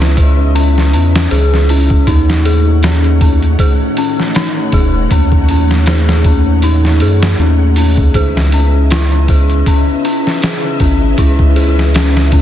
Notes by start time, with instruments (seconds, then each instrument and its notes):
Already playing: analog synth bass C#2, synth bell C#4 E4 G#4, string machine C#4 B4 D#5 E5
0.02 snare
0.17 synth bell G#4, kick, open hi-hat
0.55 synth bell C#4, open hi-hat
0.78 snare
0.93 analog synth bass E2, synth bell C#4, open hi-hat
1.16 snare
1.31 analog synth bass C#2, synth bell G#4, open hi-hat
1.54 snare
1.69 synth bell C#4, open hi-hat
1.90 kick
2.07 analog synth bass D#2, string machine A3 D#4 C#5 F#5, synth bell D#4, kick, open hi-hat
2.30 snare
2.45 synth bell G#4, open hi-hat
2.83 synth bell C#4, snare, open hi-hat
3.04 closed hi-hat
3.21 synth bell C#4, kick, open hi-hat
3.42 closed hi-hat
3.59 synth bell G#4, kick, open hi-hat
3.97 synth bell C#4, open hi-hat
4.20 snare
4.35 synth bell D#4, snare, open hi-hat
4.72 analog synth bass D#1, synth bell G#4, kick, open hi-hat
5.11 analog synth bass D#2, synth bell C#4, kick, open hi-hat
5.32 kick
5.48 synth bell C#4, open hi-hat
5.71 snare
5.86 synth bell G#4, snare, open hi-hat
6.09 snare
6.24 synth bell C#4, kick, open hi-hat
6.62 synth bell D#4, open hi-hat
6.85 snare
7.00 analog synth bass F#2, synth bell G#4, open hi-hat
7.23 snare
7.39 analog synth bass D#2, synth bell C#4
7.76 synth bell C#4, open hi-hat
7.97 kick
8.14 analog synth bass C#2, string machine C#4 B4 D#5 E5, synth bell G#4, kick, open hi-hat
8.37 snare
8.52 synth bell C#4, open hi-hat
8.90 synth bell E4, snare, open hi-hat
9.12 closed hi-hat
9.28 synth bell G#4, kick, open hi-hat
9.50 closed hi-hat
9.66 synth bell C#4, kick, open hi-hat
10.05 synth bell C#4, open hi-hat
10.27 snare
10.42 synth bell G#4, snare, open hi-hat
10.80 analog synth bass G#1, synth bell C#4, kick, open hi-hat
11.18 analog synth bass C#2, synth bell E4, kick, open hi-hat
11.39 kick
11.56 synth bell G#4, open hi-hat
11.79 snare
11.94 synth bell C#4, snare, open hi-hat
12.17 snare
12.32 synth bell C#4, kick, open hi-hat